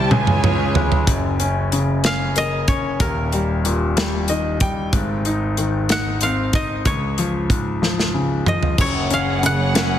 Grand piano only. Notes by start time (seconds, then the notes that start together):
Already playing: C2 C3 G3 G4
0.11 C#2 C#3
0.44 G#4
0.76 G#3
1.07 F#1 F#2
1.40 C#4
1.73 C#3
2.05 C#4
2.36 A#3
2.68 C#4
3.00 D#1 D#2
3.33 G3
3.66 A#2
3.97 G3
4.29 D#3 D#5
4.62 G3 G5
4.93 G#1 G#2
5.26 D#4
5.58 D#3
5.89 D#4
6.22 C4
6.53 D#4
6.85 C#2
7.19 F3
7.50 G#2
7.82 F3
8.14 C#3
8.46 F3
8.79 F#1 F#2
9.11 C#4
9.43 C#3
9.74 C#4